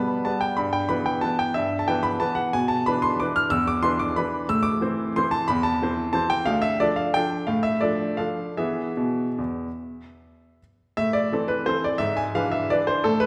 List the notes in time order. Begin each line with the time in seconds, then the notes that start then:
Already playing: B2 G3 B3 B4 A5 B5
0.25 G3 B3 B4 A5
0.41 G5
0.57 G2 B5
0.73 G5
0.89 E3 B3 B4 B5
1.06 G5
1.21 E3 B3 B4 A5
1.39 G5
1.54 G2 E5
1.79 A5
1.88 E3 B3 B4 G5
2.03 B5
2.20 E3 B3 B4 A5
2.35 F#5
2.53 B2 G#5
2.68 A5
2.86 E3 D4 B4 B5
3.02 C6
3.20 E3 D4 B4 D6
3.36 F6
3.50 E2 E6
3.67 D6
3.83 E3 D4 B4 C6
3.99 D6
4.16 E3 D4 B4 B5
4.49 A2 E6
4.63 D6
4.81 E3 C4 C5
5.16 E3 C4 C5 C6
5.31 A5
5.48 E2 B5
5.63 A5
5.82 E3 C4 C5
6.13 E3 C4 C5 A5
6.30 G5
6.46 D2 F5
6.62 E5
6.80 F3 D4 A4 D5
6.96 F5
7.14 F3 D4 A4 G5
7.47 A2 F5
7.63 E5
7.81 F3 D4 A4 D5
8.17 F3 D4 A4 F5
8.57 E3 B3 G#4 E5
8.97 B2
9.39 E2
10.97 A2 E5
11.13 D5
11.32 E3 C4 A4
11.48 B4
11.66 E3 C4 A4 C5
11.84 D5
11.98 G#2 E5
12.17 G#5
12.35 E3 D4 B4 F5
12.52 E5
12.70 E3 D4 B4 D5
12.87 C5
13.04 A2 A4
13.20 B4